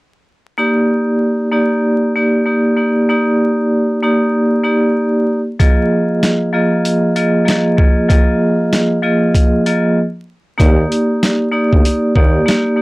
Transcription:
0.57 A#3 D#4 G4 D5
1.51 A#3 D#4 G4 D5
2.15 A#3 D#4 G4 D5
2.45 A#3 D#4 G4 D5
2.76 A#3 D#4 G4 D5
3.09 A#3 D#4 G4 D5
4.03 A#3 D#4 G4 D5
4.64 A#3 D#4 G4 D5
5.59 F3 A#3 F4 G#4 D#5, kick, closed hi-hat
6.23 snare, closed hi-hat
6.53 F3 A#3 F4 G#4 D#5
6.85 closed hi-hat
7.16 F3 A#3 F4 G#4 D#5, closed hi-hat
7.45 F3 A#3 F4 G#4 D#5, snare, closed hi-hat
7.77 F3 A#3 F4 G#4 D#5, kick
8.08 F3 A#3 F4 G#4 D#5, kick, closed hi-hat
8.73 snare, closed hi-hat
9.02 F3 A#3 F4 G#4 D#5
9.35 kick, closed hi-hat
9.66 F3 A#3 F4 G#4 D#5, closed hi-hat
10.58 D#2 A#3 D#4 G4 D5, kick, closed hi-hat
10.92 closed hi-hat
11.23 snare, closed hi-hat
11.52 A#3 D#4 G4 D5
11.73 D2, kick
11.85 closed hi-hat
12.15 D#2 A#3 D#4 G4 D5, kick
12.46 A#3 D#4 G4 D5, snare, closed hi-hat
12.76 A#3 D#4 G4 D5

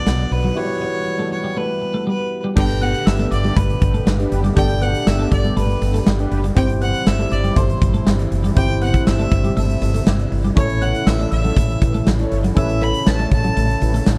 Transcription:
Already playing: D3 F#3 B3 D4 F#4 B4 D5 F#5
0.06 B1 F#3, snare, closed hi-hat
0.19 muted clean electric guitar stroke
0.31 B1 B4, open hi-hat
0.44 F#3
0.55 E3 G3 E4 F#4 G4 B4 C#5
0.69 muted clean electric guitar stroke
0.82 B3
1.19 A3
1.32 C#5, muted clean electric guitar stroke
1.44 G3
1.57 A3 B4
1.82 muted clean electric guitar stroke
1.94 A3
2.07 G3 B4
2.19 muted clean electric guitar stroke
2.44 G3
2.55 G1 D3 G3 A3 B3 D4 G4 A4 B4 G5 G6, kick, crash
2.69 muted clean electric guitar stroke, closed hi-hat
2.81 B3 D4 F#4 F#5 F#6, closed hi-hat
2.94 closed hi-hat
3.06 G1 B3 D4 G4 E5 E6, snare, tambourine
3.19 A3 B3 D4 A4, closed hi-hat
3.31 G1 D5 D6, muted clean electric guitar stroke, closed hi-hat
3.44 G3 B3 D4 G4, closed hi-hat
3.56 G1 A3 B4 B5, kick, closed hi-hat
3.70 closed hi-hat
3.82 G1 B3 D4 A4, muted clean electric guitar stroke, kick, closed hi-hat
3.94 A3, closed hi-hat
4.07 G1 G3, snare, tambourine
4.19 D4 G4 B4, muted clean electric guitar stroke, closed hi-hat
4.32 F#1, closed hi-hat
4.44 G3, closed hi-hat
4.55 G1 G3 B3 D4 G4 A4 D5 G5 G6, kick, closed hi-hat
4.69 muted clean electric guitar stroke, closed hi-hat
4.81 B3 D4 F#4 F#5 F#6, closed hi-hat
4.94 closed hi-hat
5.07 G1 B3 D4 G4 E5 E6, snare, tambourine
5.19 A3 B3 D4 A4, closed hi-hat
5.32 G1 D5 D6, muted clean electric guitar stroke, kick, closed hi-hat
5.44 G3 B3 D4 G4, closed hi-hat
5.57 G1 A3 B4 B5, closed hi-hat
5.70 closed hi-hat
5.82 G1 B3 D4 A4, muted clean electric guitar stroke, closed hi-hat
5.94 A3, closed hi-hat
6.06 G1 G3, snare, tambourine
6.19 D4 G4 B4, muted clean electric guitar stroke, closed hi-hat
6.31 F#1, closed hi-hat
6.44 G3, closed hi-hat
6.55 G1 C3 E3 G3 C4 E4 G4 C5 G5 G6, kick, closed hi-hat
6.69 muted clean electric guitar stroke, closed hi-hat
6.81 B3 F#5 F#6, closed hi-hat
6.94 closed hi-hat
7.07 G1 E5 E6, snare, tambourine
7.19 A3, closed hi-hat
7.31 G1 D5 D6, muted clean electric guitar stroke, closed hi-hat
7.44 G3, closed hi-hat
7.56 G1 A3 C5 C6, kick, closed hi-hat
7.70 closed hi-hat
7.82 G1, muted clean electric guitar stroke, kick, closed hi-hat
7.94 A3, closed hi-hat
8.07 G1 G3, snare, tambourine
8.19 muted clean electric guitar stroke, closed hi-hat
8.32 F#1, closed hi-hat
8.44 G3, closed hi-hat
8.55 G1 A3 C4 E4 G4 C5 G5 G6, kick, closed hi-hat
8.70 closed hi-hat
8.81 B3 F#5 F#6, closed hi-hat
8.94 kick, closed hi-hat
9.07 G1 E5 E6, snare, tambourine
9.19 A3, closed hi-hat
9.32 G1, muted clean electric guitar stroke, kick, closed hi-hat
9.44 G3, closed hi-hat
9.57 G1 A3 E5 E6, closed hi-hat
9.70 closed hi-hat
9.82 G1, muted clean electric guitar stroke, closed hi-hat
9.94 A3, closed hi-hat
10.07 G1 G3, snare, tambourine
10.19 muted clean electric guitar stroke, closed hi-hat
10.32 G1, open hi-hat
10.44 G3, closed hi-hat
10.55 A1 C#3 E3 A3 C#4 E4 A4 C#5 C#6, kick, closed hi-hat
10.70 muted clean electric guitar stroke, closed hi-hat
10.81 B3 C#4 E4 A4 F#5 F#6, closed hi-hat
10.95 closed hi-hat
11.06 A1 E4 G4 B4 E5 E6, snare, tambourine
11.19 A3 E4 A4 C#5, closed hi-hat
11.31 A1 E5 E6, muted clean electric guitar stroke, closed hi-hat
11.44 F#3 C#4 E4 A4, closed hi-hat
11.57 A1 A3, kick, closed hi-hat
11.69 closed hi-hat
11.82 A1 E4 G4 B4, muted clean electric guitar stroke, kick, closed hi-hat
11.94 A3, closed hi-hat
12.07 A1 F#3, snare, tambourine
12.19 E4 A4 C#5, muted clean electric guitar stroke, closed hi-hat
12.32 G1, closed hi-hat
12.44 F#3, closed hi-hat
12.55 A1 A3 C#4 E4 G4 A4 B4 C#5 E5 E6, kick, closed hi-hat
12.69 muted clean electric guitar stroke, closed hi-hat
12.81 B3 C#4 E4 A4 B5 B6, closed hi-hat
12.94 closed hi-hat
13.06 A1 E4 G4 B4 A5 A6, snare, tambourine
13.19 A3 E4 A4 C#5, closed hi-hat
13.31 A1 A5 A6, muted clean electric guitar stroke, kick, closed hi-hat
13.44 F#3 C#4 E4 A4, closed hi-hat
13.57 A1 A3, closed hi-hat
13.69 closed hi-hat
13.81 A1 E4 G4 B4, muted clean electric guitar stroke, closed hi-hat
13.94 A3, closed hi-hat
14.06 A1 F#3, snare, tambourine

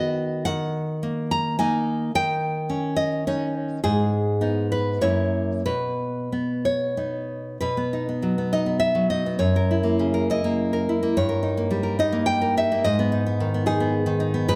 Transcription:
Already playing: D#3 B3 F#4 D#5
0.45 D#3 F#5
1.03 A#3
1.31 A#5
1.59 A#3 D#4 G#5
2.15 D#3 G5
2.70 C#4
2.96 D#5
3.27 C#4 D#4 C#5
3.84 G#2 G#4
4.41 B3 D#4
4.72 B4
5.01 F#2 A#3 E4 C#5
5.66 B2 B4
6.32 B3
6.65 C#5
6.97 B3 D#4
7.61 B2 B4
7.77 B3
7.93 D#4
8.09 B3
8.22 F#3
8.38 B3
8.53 D#4 D#5
8.66 B3
8.80 E5
8.95 F#3
9.10 D#4 D#5
9.26 B3
9.39 F#2 C#5
9.56 A#4
9.71 E4
9.83 A#3
9.99 C#3
10.14 A#4
10.30 E4 D#5
10.44 A#3
10.73 A#4
10.89 E4
11.03 A#3
11.17 G2 C#5
11.29 A#4
11.43 D#4
11.57 A#3
11.71 G3
11.83 A#4
11.99 D#4 D#5
12.12 A#3
12.26 G5
12.41 A#4
12.57 D#4 E5
12.72 A#3
12.84 G#2 D#5
12.99 B3
13.12 D#4
13.26 B3
13.40 D#3
13.54 B3
13.66 D#4 G#4
13.80 B3
14.06 D#3
14.20 D#4
14.34 B3
14.48 G#2 B4

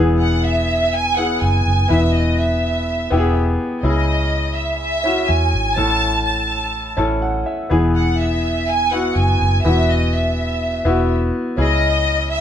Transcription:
Already playing: E1 E3 B3 E4 G#4
0.20 F#5
0.44 E5
0.94 G#5
1.17 B3 E4 G#4 F#5
1.41 F#1 G#5
1.66 F#1
1.88 E1 E3 B3 E4 B4 E5
2.14 D#5
2.39 E5
3.10 E1 B3 E4 G4
3.17 G#4
3.83 C#2 C#3 C#4 E4 G#4 D#5
4.55 E5
4.80 E5
5.04 C#4 E4 F#4
5.28 E2 G#5
5.53 G#1
5.75 A1 A2 C#4 E4 A4 A5
6.25 A5
6.97 A1 C#4 E4 A4 A5
7.22 F#5
7.46 E5
7.70 E1 E3 B3 E4 G#4
7.95 F#5
8.19 E5
8.68 G#5
8.91 B3 E4 F#4 F#5
9.16 F#1 G#5
9.40 F#1
9.64 E1 E3 B3 E4 F#4 E5
9.89 D#5
10.13 E5
10.85 E1 B3 E4 F#4
11.57 C#2 C#3 C#4 E4 G#4 D#5
12.31 E5

